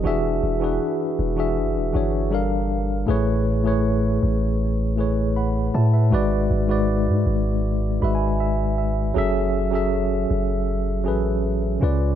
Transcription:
<<
  \new Staff \with { instrumentName = "Tine electric piano" } { \time 4/4 \key fis \minor \tempo 4 = 79 << { r1 | r2. <fis'' b''>8 <e'' a''>16 <b' e''>16~ | <b' e''>16 r4. r16 \tuplet 3/2 { r8. b''16 gis''8 } e''8 e''8 | r1 | } \\ { <e d' fis' gis' e''>8 r16 <e d' fis' gis' b'>8 r8 <e d' fis' gis' e''>8 r16 <e d' fis' gis' cis''>8 <g d' a' bes' f''>8. r16 | <a, a gis' b' cis''>8 r16 <a, a gis' b' cis''>4 r8. <a, a gis' b' cis''>4 r8 | <gis, gis fis' b' d''>8 r16 <gis, gis fis' b' d''>4 r8. <gis, gis fis' b' e''>4 r8 | <fis cis' gis' a' e''>8 r16 <fis cis' gis' a' e''>4 r8. <fis cis' gis' a' b'>4 <cis cis' eis' b' d''>8 | } >> }
  \new Staff \with { instrumentName = "808-style bass" } { \clef bass \time 4/4 \key fis \minor e,,8 e,,8 r8 e,,8 fis,,16 e,,16 g,,4. | a,,4. a,,2 a,8 | gis,,8 gis,,8. gis,16 gis,,4 gis,,4. | fis,,4. fis,,4 a,,4 cis,8 | }
>>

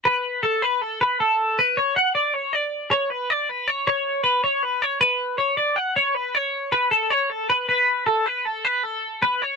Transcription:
\new Staff \with { instrumentName = "Clean electric guitar" } { \time 5/4 \key a \mixolydian \tempo 4 = 157 b'4 a'8 b'8 a'8 b'8 a'4 b'8 cis''8 | fis''8 d''8 cis''8 d''4 cis''8 b'8 d''8 b'8 cis''8 | cis''4 b'8 cis''8 b'8 cis''8 b'4 cis''8 d''8 | fis''8 cis''8 b'8 cis''4 b'8 a'8 cis''8 a'8 b'8 |
b'4 a'8 b'8 a'8 b'8 a'4 b'8 cis''8 | }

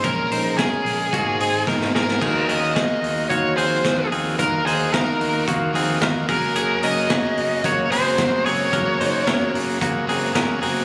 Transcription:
<<
  \new Staff \with { instrumentName = "Lead electric guitar" } { \time 4/4 \key ees \dorian \tempo 4 = 110 bes'4 aes'2 r8 bes'8~ | bes'8 ees''4. des''8 c''4 r8 | bes'8 aes'8 bes'4 r4. bes'8~ | bes'8 ees''4. des''8 c''4 des''8~ |
des''4. r2 r8 | }
  \new Staff \with { instrumentName = "Transistor combo organ" } { \time 4/4 \key ees \dorian r1 | <ees' f' ges'>8 <ees' f' ges'>8 <ees' f' ges'>8 <ees' f' ges'>8 <ees' f' ges'>8 <ees' f' ges'>8 <ees' f' ges'>8 <ees' f' ges'>8 | <ees' f' ges'>8 <ees' f' ges'>8 <ees' f' ges'>8 <ees' f' ges'>8 <ees' f' ges'>8 <ees' f' ges'>8 <ees' f' ges'>8 <bes ges' aes'>8~ | <bes ges' aes'>8 <bes ges' aes'>8 <bes ges' aes'>8 <bes ges' aes'>8 <bes ges' aes'>8 <bes ges' aes'>8 <bes ges' aes'>8 <bes ges' aes'>8 |
<bes ges' aes'>8 <bes ges' aes'>8 <bes ges' aes'>8 <bes ges' aes'>8 <bes ges' aes'>8 <bes ges' aes'>8 <bes ges' aes'>8 <bes ges' aes'>8 | }
  \new Staff \with { instrumentName = "Clean electric guitar" } { \time 4/4 \key ees \dorian <des' bes'>8 <ees' c''>8 <des' bes'>4 <bes ges'>8 <c' aes'>8 <ees' bes'>8 <c' aes'>8 | <ees' aes'>8 <des' bes'>8 <ees' aes'>4 <bes ges'>8 <c' aes'>4 <c' aes'>8 | <ees' bes'>8 <ees' c''>8 <ees' bes'>4 <bes ges'>8 <c' aes'>8 <ees' bes'>8 <des' aes'>8 | <des' aes'>8 <des' bes'>8 <des' aes'>4 <bes ges'>8 <c' aes'>4 <c' aes'>8 |
<des' bes'>8 <ees' c''>8 <des' bes'>4 <bes ges'>8 <c' aes'>8 <des' bes'>8 <c' aes'>8 | }
  \new Staff \with { instrumentName = "Overdriven electric guitar" } { \time 4/4 \key ees \dorian <bes, f aes des' aes'>8. <aes des' aes'>8. <f aes des' aes'>8 <aes bes ees' aes' c''>16 <ees' aes' c''>8. <bes ees' aes' c''>8 <bes ees' aes' c''>8 | <ees bes ges' bes'>8. <bes ges' bes'>8 <bes ges' bes'>4~ <bes ges' bes'>16 <f bes ges' bes'>8 <f bes ges' bes'>8 <f bes ges' bes'>8 | <ees bes ges' bes'>8. <bes ges' bes'>8 <bes ges' bes'>4~ <bes ges' bes'>16 <f bes ges' bes'>8 <f bes ges' bes'>8 <aes des' ges' bes'>8 | <ges aes des' ges' bes'>8. <des' ges' bes'>8 <des' ges' bes'>4~ <des' ges' bes'>16 <aes des' ges' bes'>8 <aes des' ges' bes'>8 <aes des' ges' bes'>8 |
<ges aes des' ges' bes'>8. <des' ges' bes'>8 <des' ges' bes'>4~ <des' ges' bes'>16 <aes des' ges' bes'>8 <aes des' ges' bes'>8 <aes des' ges' bes'>8 | }
  \new Staff \with { instrumentName = "Picked electric bass" } { \clef bass \time 4/4 \key ees \dorian bes,,8 bes,,8. r16 bes,,8 aes,,8 aes,,8 aes,,8 aes,,8 | ees,8 ees,8. r16 ees,8 ees,8 ees,8 ees,8 ees,8 | ees,8 ees,8. r16 ees,8 ees,8 ees,8 ees,8 ges,,8~ | ges,,8 ges,,8. r16 ges,,8 ges,,8 ges,,8 ges,,8 ges,,8 |
ges,,8 ges,,8. r16 ges,,8 ges,,8 ges,,8 ges,,8 ges,,8 | }
  \new DrumStaff \with { instrumentName = "Drums" } \drummode { \time 4/4 <hh bd>8 hho8 <hh bd sn>8 hho8 <hh bd>8 hho8 <bd sn>16 sn16 sn16 sn16 | <cymc bd>8 hho8 <hh bd sn>8 hho8 <hh bd>8 hho8 <hh bd sn>8 hho8 | <hh bd>8 hho8 <hh bd sn>8 hho8 <hh bd>8 hho8 <hh bd sn>8 <hho bd>8 | hh8 hho8 <hh bd sn>8 hho8 <hh bd>8 hho8 <hh bd sn>8 hho8 |
<hh bd>8 hho8 <hh bd sn>8 hho8 <hh bd>8 hho8 <hh bd sn>8 hho8 | }
>>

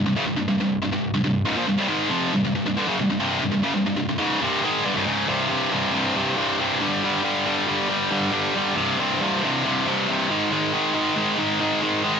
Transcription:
\new Staff \with { instrumentName = "Distorted electric guitar" } { \clef bass \time 4/4 \key c \minor \tempo 4 = 138 <c, g,>16 <fis, des>16 <c, g,>16 <c, g,>16 <c, g,>16 <c, g,>8 <c, g,>16 <c, g,>8 <c, g,>16 <c, g,>8 <des, aes,>16 <bes, f>16 <c, g,>16 | <c, g,>16 <aes, ees aes>8 <f, c f>8 <c, g,>16 <c, g,>16 <c, g,>16 <c, g,>16 <g, d>16 <fis, des>16 <c, g,>16 <c, g,>16 <c, g, c>8 <c, g,>16 | <c, g,>16 <fis, des>16 <c, g,>16 <c, g,>16 <c, g,>16 <c, g,>16 <des, aes, des>8 <c, g, c>8 <aes, ees aes>8 <g, d>16 <c, g,>16 <des, aes, des>8 | <c, g, c>8 <c, g, c>8 <c, g, c>8 <c, g, c>8 <c, g, c>8 <c, g, c>8 <c, g, c>8 <g, d g>8 |
<g, d g>8 <g, d g>8 <g, d g>8 <g, d g>8 <g, d g>8 <g, d g>8 <g, d g>8 <g, d g>8 | <c, g, c>8 <c, g, c>8 <c, g, c>8 <c, g, c>8 <c, g, c>8 <c, g, c>8 <c, g, c>8 <aes, ees aes>8 | <aes, ees aes>8 <aes, ees aes>8 <aes, ees aes>8 <aes, ees aes>8 <aes, ees aes>8 <aes, ees aes>8 <aes, ees aes>8 <aes, ees aes>8 | }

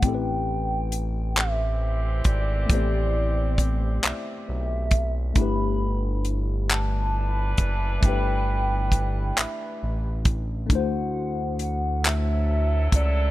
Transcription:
<<
  \new Staff \with { instrumentName = "Soft synth lead" } { \time 6/8 \key g \major \tempo 4. = 45 g''4. e''4 d''8 | r4. e''4. | b''4 r8 a''4. | g''4. e''4 r8 |
fis''4 fis''8 e''4 d''8 | }
  \new Staff \with { instrumentName = "Tine electric piano" } { \time 6/8 \key g \major <a c' e' g' a' b'>2. | <a b c' e' g' d''>2. | <a d' e' g' b'>2. | <a d' e' g' b'>2. |
<a d' e' f' fis' c''>2. | }
  \new Staff \with { instrumentName = "Horn section" } { \time 6/8 \key g \major r4. <e c' g'>4.~ | <e c' g'>2~ <e c' g'>8 r8 | r4. <e d' b'>4.~ | <e d' b'>2~ <e d' b'>8 r8 |
r4. <fis e' a'>4. | }
  \new Staff \with { instrumentName = "Analog synth bass" } { \clef bass \time 6/8 \key g \major a,,2~ a,,8 aes,,8 | a,,4. b,,8 b,,4 | g,,2~ g,,8 fis,,8 | g,,4. a,,8 a,,4 |
d,2~ d,8 cis,8 | }
  \new DrumStaff \with { instrumentName = "Drums" } \drummode { \time 6/8 <hh bd>4 hh8 <hc hh>4 <hh bd>8 | <hh bd>4 <hh bd>8 <hc hh>4 <hh bd>8 | <hh bd>4 hh8 <hc hh>4 <hh bd>8 | <hh bd>4 <hh bd>8 <hc hh>4 <hh bd>8 |
<hh bd>4 hh8 <hc hh>4 <hh bd>8 | }
>>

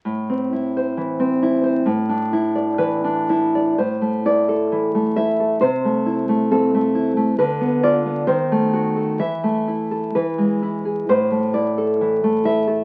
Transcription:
\new Staff \with { instrumentName = "Nylon-string guitar" } { \time 2/4 \key a \minor \tempo 4 = 66 << { r2 | r4 b'4 | c''8 d''4 e''8 | c''4 a'4 |
b'8 d''8 bis'4 | e''4 b'4 | c''8 d''4 e''8 | } \\ { a,16 c'16 e'16 c''16 e16 c'16 e'16 c''16 | a,16 d'16 e'16 d''16 e16 d'16 e'16 d''16 | a,16 a16 e'16 a'16 e16 a16 e'16 a'16 | c16 a16 e'16 a16 c'16 a16 e'16 a16 |
d16 b16 f'16 b16 dis16 a16 fis'16 a'16 | e16 a16 e'16 a'16 e16 gis16 e'16 gis'16 | a,16 a16 e'16 a'16 e16 a16 e'16 a'16 | } >> }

